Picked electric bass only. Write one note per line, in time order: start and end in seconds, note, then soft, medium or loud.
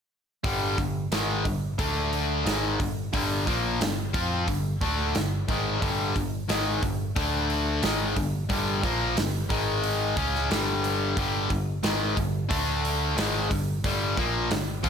0.44 0.76 G1 medium
0.78 1.10 G1 medium
1.12 1.44 G#1 medium
1.45 1.77 G1 medium
1.79 2.42 D2 medium
2.46 2.78 G#1 loud
2.80 3.11 G1 medium
3.13 3.45 G1 medium
3.47 3.78 A#1 medium
3.80 4.12 G1 medium
4.14 4.46 F2 medium
4.48 4.79 G1 medium
4.81 5.13 D2 loud
5.15 5.46 G1 medium
5.48 5.80 G#1 medium
5.82 6.13 G1 loud
6.16 6.47 G1 medium
6.49 6.80 G#1 medium
6.83 7.14 G1 medium
7.16 7.79 D2 medium
7.83 8.14 G#1 loud
8.16 8.48 G1 medium
8.50 8.81 G1 loud
8.83 9.14 A#1 medium
9.17 9.48 G1 medium
9.50 10.13 G#1 loud
10.17 10.48 C#2 medium
10.51 11.13 G1 loud
11.17 11.48 G1 loud
11.50 11.82 G1 medium
11.84 12.15 G#1 medium
12.17 12.48 G1 medium
12.51 13.14 D2 medium
13.18 13.49 G#1 loud
13.51 13.82 G1 medium
13.84 14.15 G1 loud
14.17 14.48 A#1 medium
14.51 14.82 G1 medium
14.84 14.89 F2 medium